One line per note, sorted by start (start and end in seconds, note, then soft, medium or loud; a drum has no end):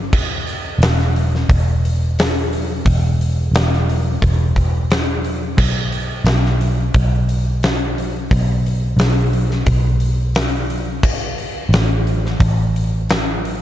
0.00 0.13 G1 medium
0.13 0.76 E1 medium
0.13 kick loud
0.13 crash loud
0.47 open hi-hat medium
0.79 1.43 E1 medium
0.79 open hi-hat medium
0.83 snare loud
0.99 snare soft
1.16 open hi-hat medium
1.35 snare soft
1.49 2.81 E1 medium
1.49 kick loud
1.49 open hi-hat medium
1.85 open hi-hat medium
2.19 snare loud
2.19 open hi-hat medium
2.53 open hi-hat medium
2.85 3.49 E1 medium
2.85 kick loud
2.85 open hi-hat medium
3.21 open hi-hat medium
3.52 4.16 E1 medium
3.52 open hi-hat medium
3.56 snare loud
3.73 snare soft
3.90 open hi-hat medium
4.22 5.57 E1 medium
4.22 kick loud
4.22 open hi-hat medium
4.56 kick medium
4.56 open hi-hat medium
4.91 snare loud
4.91 open hi-hat medium
5.25 open hi-hat medium
5.57 6.21 B1 medium
5.57 kick loud
5.57 crash loud
5.92 open hi-hat medium
6.24 6.89 B1 medium
6.24 snare loud
6.24 open hi-hat medium
6.45 snare soft
6.61 open hi-hat medium
6.94 8.27 B1 medium
6.94 kick loud
6.94 open hi-hat medium
7.29 open hi-hat medium
7.63 snare loud
7.63 open hi-hat medium
7.98 open hi-hat medium
8.31 8.95 B1 medium
8.31 kick loud
8.31 open hi-hat medium
8.66 open hi-hat medium
8.97 9.62 B1 medium
8.97 snare loud
8.97 open hi-hat medium
9.33 open hi-hat medium
9.51 snare soft
9.66 11.03 B1 medium
9.66 kick loud
9.66 open hi-hat medium
10.00 open hi-hat medium
10.35 snare loud
10.35 open hi-hat medium
10.70 open hi-hat medium
11.03 11.68 A1 medium
11.03 kick loud
11.03 crash loud
11.38 open hi-hat medium
11.69 12.35 A1 medium
11.69 open hi-hat medium
11.74 snare loud
12.07 open hi-hat medium
12.26 snare soft
12.40 13.62 A1 medium
12.40 kick loud
12.40 open hi-hat medium
12.76 open hi-hat medium
13.10 snare loud
13.10 open hi-hat medium
13.45 open hi-hat medium